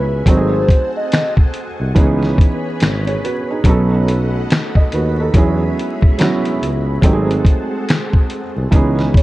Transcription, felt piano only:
Already playing: F#3 B3 C#4 E4 G#4
0.26 F#3 A3 C4 D#4
0.30 F#4
0.37 G#4
1.95 E3 B3 C#4 D#4
1.99 G#4
3.07 G#4 C#5
3.24 F#4 B4
3.50 D#4 G#4
3.65 F#3 B3 C#4 D#4
3.69 A4
4.76 A4 D#5
4.94 F#4 B4
5.20 D#4 A4
5.33 F#3 B3 C#4 E4
5.38 G#4
6.18 F#3 B3 C#4 E4
6.23 F#4
7.01 F#3 A3 C4 D#4
7.06 G4
7.13 G#4
8.71 E3 B3 C#4 D#4
8.76 G#4

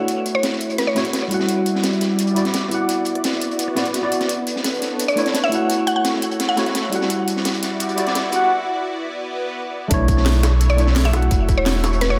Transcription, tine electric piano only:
Already playing: A3 E4 F#4 F#5
0.94 A3 E4 F#4 C#5
1.28 G3 E4
1.32 F#4 F#5
2.35 G3 E4 F#4 D5
2.68 B3 E4
2.72 F#4 F#5
3.75 B3 E4 F#4 D5
4.02 B3 E4 F#4 D5
5.15 A3 D4 E4 C#5
5.49 A3 E4
5.53 F#4 F#5
6.56 A3 E4 F#4 C#5
6.89 G3 E4
6.94 F#4 F#5
7.96 G3 E4 F#4 D5
8.30 B3 E4
8.34 F#4 F#5
9.88 A3 D4
9.92 E4 C#5
10.77 A3 D4 E4 C#5
11.10 A3 E4
11.15 F#4 F#5

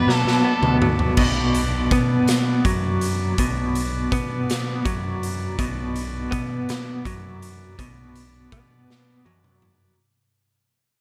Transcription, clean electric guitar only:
Already playing: B2 B3
0.08 F#3
0.44 B3
0.82 F#3
1.18 B2
1.92 B3
2.65 F#3
3.39 B2
4.12 B3
4.85 F#3
5.59 B2
6.31 B3
7.06 F#3
7.79 B2
8.52 B3
9.25 F#3

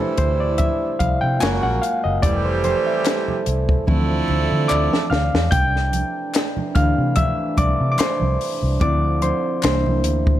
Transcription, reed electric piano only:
Already playing: A3 D4 E4 C5
0.00 A4
0.18 C5
0.40 D5
0.58 E5
0.99 F5
1.21 G5
1.39 G#3 A#3 F4 G#5
1.63 F#5
1.82 F5
2.04 D#5
2.22 G3 A3 E4 D5
2.45 C5
2.64 C5
2.87 E5
3.87 E3 F3 C4
4.68 D5 D6
5.10 F5 F6
5.51 G5 G6
6.75 E3 A3 D4 F5 F6
7.16 E5 E6
7.58 D5 D6
7.92 D6
7.99 C5 C6
8.81 F3 C4 E4 D5 D6
9.22 C5 C6
9.63 E3 A#3 D4 C5 C6

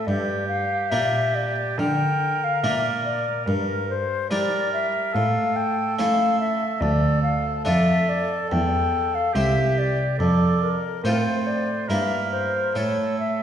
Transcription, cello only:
0.07 G2
0.92 A#2
1.78 D3
2.64 A#2
3.47 G2
4.31 G3
5.15 A2
6.00 A3
6.82 D2
7.66 F2
8.52 E2
9.35 C2
10.20 F2
11.04 A2
11.89 G2
12.76 A2

